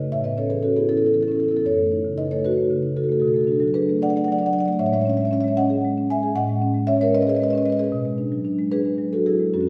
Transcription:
marimba
Already playing: B4 D#5
0.00 A3
0.12 A2 C#5 E5
0.24 B3 B4 D#5
0.37 C#4 A4 C#5
0.50 E3 G#4 B4
0.63 C#4 F#4 A4
0.76 B3 E4 G#4
0.89 C#4 E4 A4
0.97 E4 A4
1.02 B3 E4
1.06 A4
1.13 E3 E4 A4
1.21 E4 A4
1.28 C#4 E4
1.32 A4
1.36 E4 A4
1.40 E3 E4
1.48 E4 A4
1.52 B3
1.57 E4 A4
1.65 F#2 A4 C#5
1.78 A3
1.92 D#4
2.05 C#3
2.18 D#4 B4 D#5
2.31 A3 A4 C#5
2.45 D#4 F#4 B4
2.58 A3
2.70 C#3
2.83 D#4
2.97 C#3 F#4 A4
3.04 F#4 A4
3.09 A3 F#4 A4
3.20 B2 F#4 A4
3.27 F#4 A4
3.33 A3 F#4 A4
3.41 F#4 A4
3.47 D4 F#4
3.52 F#4 A4
3.60 F#3 F#4 A4
3.68 A4
3.74 D4 G#4 B4
3.89 A3
4.02 D4 D5 F#5
4.09 D5 F#5
4.16 A3 D5 F#5
4.24 F#3 D5 F#5
4.32 D5 F#5
4.38 D4 D5 F#5
4.46 D5 F#5
4.53 F#3 D5 F#5
4.59 D5 F#5
4.65 A3 D5 F#5
4.73 D5
4.79 A2 C#5 E5
4.86 C#5 E5
4.93 G#3 C#5 E5
5.00 C#5 E5
5.05 C#4 C#5
5.10 E5
5.14 G#3 C#5 E5
5.20 C#5
5.25 C#5 E5
5.31 C#4 C#5 E5
5.40 G#3 C#5 E5
5.48 C#5 E5
5.57 C#4 D#5 F#5
5.70 G#4
5.85 G#3
5.97 C#4
6.10 G#3 E5 G#5
6.23 G#4
6.36 A2 D#5 F#5
6.49 G#3
6.62 C#4
6.74 G#3
6.87 C#4 C#5 E5
7.01 G#3 A#4 C#5
7.15 C#4 B4 D#5
7.21 B4 D#5
7.27 G#4 B4 D#5
7.35 B4 D#5
7.40 G#3 B4 D#5
7.48 B4 D#5
7.53 C#4 B4
7.58 D#5
7.62 G#3 B4 D#5
7.70 B4 D#5
7.77 G#4 B4 D#5
7.84 B4
7.92 B2
8.05 G#3
8.18 D4
8.32 F#3
8.45 D4
8.58 G#3
8.71 D4 G#4 B4
8.85 G#3
8.98 F#3
9.13 D4 F#4 A4
9.26 F#3 E4 G#4
9.40 G#3
9.54 F#2 C#4 F#4
9.61 C#4 F#4

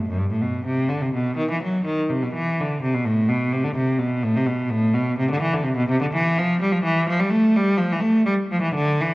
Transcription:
cello
0.09 F#2
0.19 G2
0.31 A2
0.42 B2
0.65 C3
0.89 D3
1.02 C3
1.14 B2
1.37 D#3
1.51 E3
1.63 F#3
1.86 D#3
2.10 C3
2.23 B2
2.34 E3
2.61 D3
2.82 C3
2.94 B2
3.05 A2
3.29 B2
3.53 C3
3.64 D3
3.76 C3
3.98 B2
4.23 A2
4.36 C3
4.46 B2
4.70 A2
4.94 B2
5.19 C3
5.31 D3
5.42 E3
5.54 D3
5.64 C3
5.77 B2
5.89 C3
6.01 D3
6.13 E3
6.39 F3
6.61 G3
6.72 F3
6.84 E3
7.09 F3
7.20 G3
7.30 A3
7.56 G3
7.77 F3
7.92 E3
8.01 A3
8.26 G3
8.52 F3
8.63 E3
8.75 D3
9.01 E3

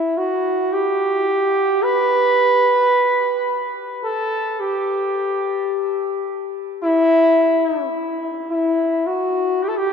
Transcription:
flugelhorn
Already playing: E4
0.17 F#4
0.73 G4
1.84 B4
4.05 A4
4.60 G4
6.82 E4
8.51 E4
9.06 F#4
9.63 G4
9.68 A4
9.77 G4

